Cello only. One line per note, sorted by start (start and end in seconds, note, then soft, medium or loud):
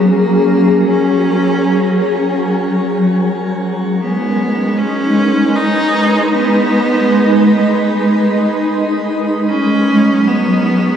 0.00 0.10 B3 medium
0.09 0.87 A#3 loud
0.88 2.39 C#4 loud
4.01 4.79 B3 medium
4.78 5.57 C#4 loud
5.55 6.34 D#4 loud
6.33 7.89 B3 medium
9.48 10.29 C#4 medium
10.28 10.97 B3 medium